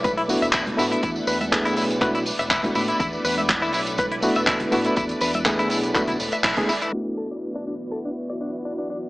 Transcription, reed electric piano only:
0.29 0.75 A3 medium
0.29 0.76 B3 medium
0.29 0.76 D4 medium
0.29 0.76 E4 medium
0.29 0.76 F#4 loud
0.77 1.49 A3 medium
0.77 1.49 B3 medium
0.77 1.49 D4 medium
0.77 1.50 E4 medium
0.77 1.50 F#4 medium
1.52 1.98 A3 medium
1.52 1.98 B3 medium
1.52 1.99 D4 medium
1.52 1.99 E4 medium
1.52 1.99 G#4 loud
2.01 2.22 A3 medium
2.01 2.22 B3 medium
2.01 2.22 D4 medium
2.01 2.23 E4 medium
2.01 2.23 F#4 loud
2.63 4.20 A3 medium
2.63 4.20 B3 medium
2.63 4.20 D4 medium
2.63 4.21 E4 medium
2.63 4.21 F#4 medium
4.22 4.69 A3 medium
4.22 4.69 B3 medium
4.22 4.69 D4 medium
4.22 4.69 E4 medium
4.22 4.70 F#4 loud
4.72 5.43 A3 medium
4.72 5.43 B3 medium
4.72 5.43 D4 medium
4.72 5.43 E4 medium
4.72 5.44 F#4 medium
5.45 5.92 A3 medium
5.45 5.92 B3 medium
5.45 5.92 D4 medium
5.45 5.92 E4 medium
5.45 5.92 G#4 loud
5.95 6.16 A3 medium
5.95 6.16 B3 medium
5.95 6.16 D4 medium
5.95 6.16 E4 medium
5.95 6.16 F#4 loud
6.57 6.69 A3 medium
6.57 6.69 B3 medium
6.57 6.70 D4 medium
6.57 6.70 E4 medium
6.57 6.70 G#4 loud
6.92 9.09 A3 medium
6.92 9.09 B3 medium
6.92 9.09 D4 medium
6.92 9.09 E4 medium
6.92 9.09 F#4 medium

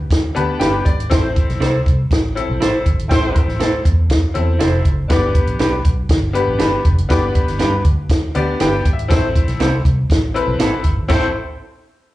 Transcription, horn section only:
1.09 1.26 A3 medium
1.09 1.26 C4 medium
1.09 1.26 E4 medium
1.09 1.26 C5 medium
3.07 3.41 A3 medium
3.07 3.41 C4 loud
3.07 3.41 E4 medium
3.07 3.41 C5 loud
5.08 5.25 B3 medium
5.08 5.25 D4 medium
5.08 5.26 G4 medium
5.08 5.25 D5 medium
7.09 7.26 B3 medium
7.09 7.25 D4 medium
7.09 7.25 G4 medium
7.09 7.25 D5 medium
9.10 9.26 A3 medium
9.10 9.26 C4 medium
9.10 9.26 E4 loud
9.10 9.26 C5 loud
11.10 11.22 A3 medium
11.10 11.23 C4 medium
11.10 11.23 E4 medium
11.10 11.23 C5 loud

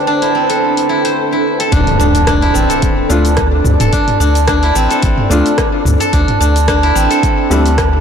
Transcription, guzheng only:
0.00 0.34 C4 medium
0.00 0.22 E4 medium
0.00 0.49 A4 medium
0.07 1.72 D4 loud
0.22 0.89 E4 medium
0.35 2.54 C4 medium
0.50 1.59 A4 medium
0.89 1.32 E4 medium
1.05 3.03 C5 medium
1.32 2.42 E4 medium
1.60 2.69 A4 medium
1.72 1.99 D4 medium
1.99 2.27 D4 medium
2.27 3.09 D4 loud
2.42 4.63 E4 medium
2.54 4.75 C4 medium
2.70 3.80 A4 medium
3.09 3.92 D4 medium
3.80 4.90 A4 medium
3.93 4.20 D4 medium
4.20 4.47 D4 medium
4.48 5.30 D4 loud
4.63 6.83 E4 medium
4.75 6.95 C4 medium
4.91 6.00 A4 medium
5.30 6.12 D4 medium
6.00 7.10 A4 medium
6.13 6.40 D4 medium
6.40 6.67 D4 medium
6.68 7.51 D4 loud
6.83 8.01 E4 medium
6.95 8.01 C4 medium
7.11 8.01 A4 medium
7.51 8.01 D4 medium

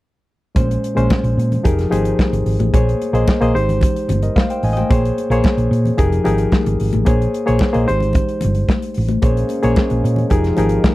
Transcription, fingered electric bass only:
0.56 0.76 A#1 loud
0.97 1.07 A#1 medium
1.24 1.33 A#1 medium
1.37 1.57 A#2 medium
1.65 1.84 F1 loud
1.92 2.11 G#1 medium
2.32 2.42 G#1 medium
2.46 2.56 G#1 medium
2.59 2.69 A1 medium
2.74 2.93 A#1 loud
3.13 3.23 A#1 medium
3.41 3.51 A#1 medium
3.55 3.83 G#1 medium
4.08 4.28 G1 medium
4.63 4.82 A1 medium
4.91 5.10 A#1 loud
5.30 5.40 A#1 medium
5.57 5.67 A#1 medium
5.71 5.90 A#2 medium
5.99 6.18 F1 loud
6.26 6.45 G#1 medium
6.66 6.76 G#1 medium
6.81 6.90 G#1 medium
6.94 7.03 A1 medium
7.07 7.26 A#1 loud
7.49 7.58 A#1 medium
7.75 7.84 A#1 medium
7.89 8.17 G#1 medium
8.44 8.62 G1 medium
8.98 9.16 A1 medium
9.23 9.42 A#1 loud
9.64 9.73 A#1 medium
9.91 10.00 A#1 medium
10.04 10.23 A#2 medium
10.31 10.50 F1 medium
10.58 10.77 G#1 medium

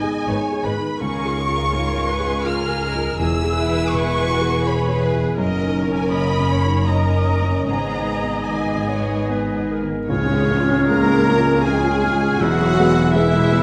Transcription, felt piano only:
0.00 0.97 G#2 soft
0.00 1.04 D#3 soft
0.00 0.28 D#4 soft
0.00 0.04 G#4 soft
0.00 0.43 G#4 soft
0.28 0.67 D#4 soft
0.52 0.92 G#4 soft
0.76 1.01 D#4 soft
1.01 3.15 C#2 medium
1.25 1.64 G#4 soft
1.48 1.87 F4 soft
1.73 2.11 G#2 soft
1.97 2.36 F4 soft
2.20 2.60 G#4 soft
2.45 2.85 F4 medium
2.70 3.10 G#4 soft
2.95 3.20 F4 soft
3.19 5.34 E2 medium
3.44 3.83 G#4 soft
3.68 4.07 E4 soft
3.93 4.32 B2 soft
4.17 4.56 E4 soft
4.41 4.80 G#4 soft
4.65 5.04 E4 medium
5.14 5.38 E4 soft
5.38 7.64 F#2 medium
5.63 6.02 D#4 soft
5.88 6.27 C#4 soft
6.12 6.53 C#3 soft
6.38 6.79 C#4 soft
6.64 7.04 D#4 soft
6.89 7.30 C#4 soft
7.15 7.57 D#4 soft
7.42 7.68 C#4 soft
7.68 10.05 G#2 medium
7.96 8.38 D#4 soft
8.23 8.65 B3 soft
8.49 8.91 D#3 soft
8.75 9.18 B3 soft
9.03 9.45 D#4 soft
9.30 9.72 B3 soft
9.56 9.99 D#4 soft
9.83 10.09 B3 soft
10.09 10.48 C#2 medium
10.50 10.86 G#3 soft
10.50 10.86 C#4 soft
10.50 10.86 F4 medium
10.90 11.25 G#3 soft
10.90 11.25 C#4 soft
10.90 11.25 F4 soft
11.29 11.63 G#3 soft
11.29 11.63 C#4 soft
11.29 11.63 F4 soft
11.66 12.00 G#3 soft
11.66 12.00 C#4 medium
11.66 12.00 F4 medium
12.04 12.38 G#3 soft
12.04 12.38 C#4 soft
12.04 12.38 F4 soft
12.40 12.77 E2 medium
12.79 13.12 G#3 medium
12.79 13.12 B3 medium
12.79 13.12 G#4 medium
13.15 13.48 G#3 soft
13.15 13.48 B3 soft
13.15 13.48 G#4 medium
13.52 13.63 G#3 soft
13.52 13.63 B3 medium
13.52 13.63 G#4 medium

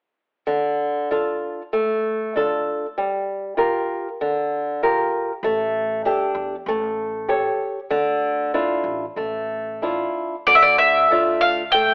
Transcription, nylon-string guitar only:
0.47 1.08 D3 soft
1.11 1.61 D4 soft
1.11 1.61 F4 soft
1.11 1.61 A4 soft
1.73 2.33 A3 soft
2.36 2.85 D4 soft
2.36 2.85 F4 soft
2.36 2.86 A4 soft
2.98 3.57 G3 soft
3.57 4.07 F4 soft
3.57 4.08 G4 soft
3.57 4.08 A#4 soft
4.21 4.81 D3 soft
4.83 5.32 F4 soft
4.83 5.32 G4 soft
4.83 5.32 A#4 soft
5.44 6.03 A3 medium
6.05 6.54 D4 soft
6.05 6.54 G4 soft
6.05 6.55 A4 soft
6.68 7.27 A3 medium
7.29 7.78 G4 soft
7.29 7.79 A4 soft
7.29 7.79 C#5 soft
7.90 8.51 D3 medium
8.54 9.04 D4 soft
8.54 9.04 E4 soft
8.54 9.04 F4 soft
9.17 9.80 A3 soft
9.82 10.34 D4 soft
9.82 10.35 E4 soft
9.82 10.35 F4 soft
10.47 11.09 D3 soft
11.11 11.61 A3 soft
11.11 11.62 D4 soft
11.11 11.62 F4 soft
11.74 11.94 A3 soft

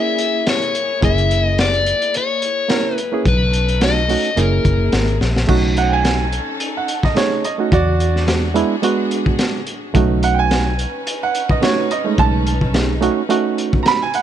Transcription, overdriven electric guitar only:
0.00 0.49 E5 loud
0.49 1.00 C#5 medium
1.05 1.46 E5 loud
1.46 1.61 D#5 loud
1.61 2.17 D5 medium
2.17 2.95 C#5 medium
2.95 3.28 B4 medium
3.28 3.84 B4 medium
3.83 4.40 D#5 medium
4.39 5.18 A#4 medium

